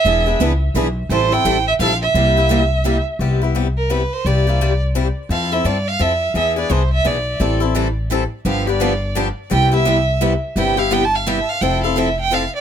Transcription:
X:1
M:3/4
L:1/16
Q:"Swing" 1/4=171
K:Cmix
V:1 name="Violin"
e4 z8 | c2 g4 e2 f2 e2- | e8- e2 z2 | [K:C] z6 _B2 =B2 c2 |
d6 z6 | f2 e2 d2 f2 e4 | e2 d2 c2 e2 d4- | d2 z8 z2 |
f2 d6 z4 | g2 e6 z4 | g2 f2 (3g2 a2 f2 e2 f2 | [K:F] g2 f2 e2 g2 f2 d2 |]
V:2 name="Steel-string acoustic guitar"
[E,=B,D^G]2 [B,DG]2 [E,B,DG] z3 [E,B,DG] z3 | [E,G,CEA]2 [CEA]2 [E,G,CEA] z3 [E,G,CEA] z3 | [C,G,B,EG]2 [B,EG]2 [C,G,B,EG] z3 [C,G,B,EG] z3 | [K:C] [C,G,B,EG]2 [B,EG]2 [C,G,B,EG] z3 [C,G,B,EG] z3 |
[C,G,_B,EG]2 [B,EG]2 [C,G,B,EG] z3 [C,G,B,EG] z3 | [F,CEA]2 [CEA]2 [F,CEA] z3 [F,CEA] z3 | [E,B,D^G]2 [B,DG]2 [E,B,DG] z3 [E,B,DG] z3 | [E,G,CEA]2 [CEA]2 [E,G,CEA] z3 [E,G,CEA] z3 |
[D,F,B,DG]2 [B,DG]2 [D,F,B,DG] z3 [D,F,B,DG] z3 | [C,G,B,EG]2 [B,EG]2 [C,G,B,EG] z3 [C,G,B,EG] z3 | [C,G,B,EG]2 [B,EG]2 [C,G,B,EG] z3 [C,G,B,EG] z3 | [K:F] [F,CEA]2 [CEA]2 [F,CEA] z3 [F,CEA] z3 |]
V:3 name="Steel-string acoustic guitar"
[E,=B,D^G=B]2 z2 [E,B,DGB] z3 [E,B,DGB] z3 | [E,G,CEA]2 z2 [E,G,CEA] z3 [E,G,CEA] z3 | [C,G,B,EG]2 z2 [C,G,B,EG] z3 [C,G,B,EG] z3 | [K:C] z12 |
z12 | z12 | z12 | [E,G,CEA]2 z2 [E,G,CEA] z3 [E,G,CEA] z3 |
[D,F,B,DG]2 z2 [D,F,B,DG] z3 [D,F,B,DG] z3 | [C,G,B,EG]2 z2 [C,G,B,EG] z3 [C,G,B,EG] z3 | [C,G,B,EG]2 z2 [C,G,B,EG] z3 [C,G,B,EG] z3 | [K:F] [F,CEA]2 z2 [F,CEA] z3 [F,CEA] z3 |]
V:4 name="Upright bass" clef=bass
E,,,4 _D,,4 =B,,,4 | A,,,4 A,,,4 B,,,4 | C,,12 | [K:C] C,,12 |
C,,12 | F,,4 G,,4 F,,4 | E,,4 C,,4 B,,,4 | A,,,12 |
G,,,12 | C,,12 | G,,,12 | [K:F] F,,,12 |]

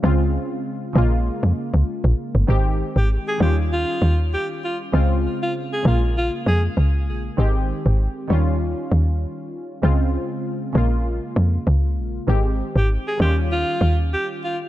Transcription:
X:1
M:4/4
L:1/16
Q:"Swing 16ths" 1/4=98
K:Bbdor
V:1 name="Alto saxophone"
z16 | z3 G z A G z F3 z G z F z | z3 F z A F z F z A z4 z | z16 |
z16 | z3 G z A G z F3 z G z F z |]
V:2 name="Synth keys"
[D,A,CF]6 [D,A,B,F]8- [D,A,B,F]2 | [E,A,CG]6 [E,G,DF]8- [E,G,DF]2 | [D,A,CF]6 [D,A,B,F]8- [D,A,B,F]2 | [E,A,CG]6 [E,G,DF]8- [E,G,DF]2 |
[D,A,CF]6 [D,A,B,F]8- [D,A,B,F]2 | [E,A,CG]6 [E,G,DF]8- [E,G,DF]2 |]
V:3 name="Log drum bass" clef=bass
D,,3 z3 B,,,3 F,, z D,, z B,,, z G,,, | A,,,3 A,,,2 z E,,4 E,,3 z3 | D,,3 z3 B,,,4 F,,2 D,,2 B,,,2 | A,,,3 A,,,2 z E,,4 E,,3 z3 |
D,,3 z3 B,,,4 F,,2 D,,2 B,,,2 | A,,,3 A,,,2 z E,,4 E,,3 z3 |]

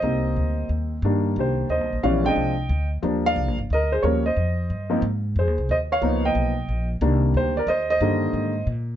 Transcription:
X:1
M:3/4
L:1/8
Q:"Swing" 1/4=180
K:Cm
V:1 name="Grand piano"
[ce]4 z2 | z2 [Gc]2 [ce]2 | [df] [eg]4 z | z [df]2 z [Be] [Ac] |
[B_d] [ce]4 z | z2 [Ac]2 [ce] [_df]- | [_df] [eg]4 z | z2 [Gc] [Bd] [ce] [ce]- |
[ce]4 z2 |]
V:2 name="Grand piano"
[G,B,CE]4- [G,B,CE] z | [E,G,B,D]4- [E,G,B,D] z | [=E,G,=B,_D] [F,A,C=D]2 z3 | [F,G,B,D]3 z3 |
[F,G,B,_D] z4 [F,B,CE] | z6 | [F,B,_CE]3 z3 | [E,G,B,D]3 z3 |
[D,E,G,B,]3 z3 |]
V:3 name="Upright bass" clef=bass
C,,2 D,,2 E,,2 | G,,2 C,,2 (3E,, C,, B,,, | B,,,2 C,,2 D,,2 | E,,2 (3C,, B,,, G,,, D,,2 |
E,,2 F,,2 G,,2 | A,,2 (3F,, E,, C,, E,,2 | _D,,2 _C,,2 B,,,2 | C,,2 D,,2 E,,2 |
G,,2 A,,2 B,,2 |]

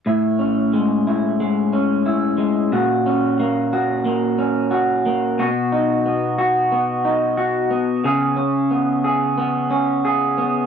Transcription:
X:1
M:4/4
L:1/8
Q:"Swing 16ths" 1/4=90
K:Alyd
V:1 name="Clean electric guitar"
[A,,E] C G, E G, C E G, | [^A,,F] C ^A, F A, C F A, | [B,,F] D B, F B, D F B, | [C,G] C B, G B, C G B, |]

